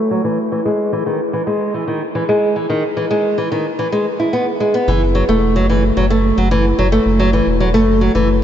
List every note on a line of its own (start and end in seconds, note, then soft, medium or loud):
0.11 0.24 F#3 medium
0.24 0.37 E3 medium
0.52 0.59 E3 medium
0.65 0.91 G#3 medium
0.93 1.05 E3 medium
1.06 1.19 D#3 medium
1.33 1.41 E3 medium
1.47 1.73 G#3 medium
1.74 1.87 E3 medium
1.88 2.01 D#3 medium
2.15 2.23 E3 medium
2.29 2.55 G#3 medium
2.56 2.69 E3 medium
2.70 2.83 D#3 medium
2.97 3.05 E3 medium
3.11 3.36 G#3 medium
3.38 3.51 E3 medium
3.52 3.64 D#3 medium
3.79 3.87 E3 medium
3.92 4.05 G#3 medium
4.20 4.32 E4 medium
4.33 4.45 B3 medium
4.60 4.73 G#3 medium
4.74 4.87 B3 medium
4.88 5.23 F#1 medium
4.88 5.01 E3 medium
5.15 5.23 F#3 medium
5.29 5.58 E1 loud
5.29 5.55 A3 loud
5.56 5.92 F#1 loud
5.56 5.69 F#3 medium
5.70 5.83 E3 medium
5.97 6.32 F#1 medium
5.97 6.05 F#3 medium
6.10 6.36 A3 medium
6.38 6.73 F#1 loud
6.38 6.51 F#3 medium
6.51 6.64 E3 medium
6.79 6.99 F#1 loud
6.79 6.86 F#3 medium
6.92 7.18 A3 loud
7.06 7.41 F#1 loud
7.19 7.33 F#3 medium
7.33 7.46 E3 medium
7.47 7.76 E1 loud
7.60 7.68 F#3 medium
7.74 8.10 F#1 loud
7.74 8.00 A3 loud
8.01 8.14 F#3 medium
8.15 8.44 F#1 medium
8.15 8.28 E3 medium